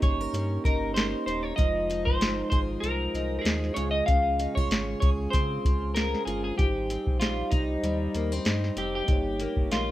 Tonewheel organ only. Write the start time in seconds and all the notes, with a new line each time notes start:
Already playing: A#3 C#4 D#4 G4
1.56 G#3 D#4 F4
1.61 C5
3.74 G#3 C#4 F4
3.79 G#4
6.56 G3 D#4 G4
6.61 C5
9.06 A#3 D#4 G4
9.11 C#5